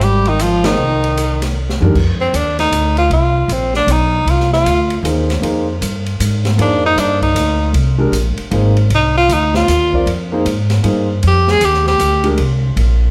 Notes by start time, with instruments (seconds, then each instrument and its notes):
Already playing: upright bass G#1
0.01 bass clarinet G3, tenor saxophone G4, hi-hat pedal, ride
0.25 bass clarinet D#3, tenor saxophone D#4, ride
0.39 bass clarinet F3, tenor saxophone F4, hi-hat pedal, ride
0.64 bass clarinet D#3, grand piano A#3 D#4 G#4 C5, tenor saxophone D#4, snare, ride
0.78 upright bass C2
1.04 ride
1.17 hi-hat pedal, ride
1.42 snare, ride
1.70 snare
1.80 upright bass F#2, grand piano D#3 G#3 D4 G4 A#4, floor tom
1.95 upright bass F2, kick, crash
2.21 tenor saxophone C4
2.33 upright bass D#2, tenor saxophone D4, hi-hat pedal, ride
2.59 tenor saxophone D#4, snare, ride
2.72 upright bass D2, hi-hat pedal, ride
2.97 tenor saxophone F4, ride
3.10 upright bass C2, tenor saxophone F4, ride
3.48 upright bass A#1, hi-hat pedal, ride
3.53 tenor saxophone C4
3.74 tenor saxophone D4, snare
3.87 upright bass B1, hi-hat pedal, ride
3.92 tenor saxophone D#4
4.25 upright bass C2, ride
4.30 tenor saxophone F4
4.40 snare
4.53 tenor saxophone F4, snare
4.65 upright bass D2, hi-hat pedal, ride
4.90 ride
5.03 upright bass D#2, grand piano A#3 D#4 G#4 C5, hi-hat pedal, ride
5.30 snare, ride
5.42 upright bass F2, grand piano A#3 D#4 G#4 C5, ride
5.81 upright bass G2, hi-hat pedal, ride
6.06 ride
6.20 upright bass G#2, hi-hat pedal, ride
6.45 snare, ride
6.58 upright bass F2, grand piano A#3 D#4 G#4 C5, tenor saxophone D4, ride
6.86 tenor saxophone D#4
6.96 upright bass G2, tenor saxophone D4, hi-hat pedal, ride
7.22 tenor saxophone D#4, kick, ride
7.35 upright bass D2, hi-hat pedal, ride
7.73 upright bass C2, ride
7.98 grand piano G#3 D4 G4 A#4
8.12 upright bass A#1, hi-hat pedal, ride
8.38 muted upright bass stroke, ride
8.51 upright bass G#1, grand piano A#3 D#4 G#4 C5, ride
8.77 ride
8.90 upright bass C2, ride
8.95 tenor saxophone D#4
9.17 tenor saxophone F4
9.29 upright bass D2, hi-hat pedal, ride
9.33 tenor saxophone D#4
9.54 tenor saxophone F4, snare
9.68 upright bass D#2, hi-hat pedal, ride
9.93 grand piano C4 F4 A#4 D5, kick
10.06 upright bass F2, ride
10.32 grand piano A#3 D#4 G#4 C5
10.45 upright bass G#2, hi-hat pedal, ride
10.70 snare, ride
10.83 upright bass G2, grand piano A#3 D#4 G#4 C5, ride
11.23 upright bass F2, ride
11.27 tenor saxophone G4
11.48 tenor saxophone G#4, snare
11.61 upright bass D#2, tenor saxophone G4, hi-hat pedal, ride
11.74 snare
11.87 tenor saxophone G4, snare
11.99 upright bass D2, hi-hat pedal, ride
12.24 grand piano G#3 D4 G4 A#4, ride
12.38 upright bass C2, ride
12.76 upright bass A#1, ride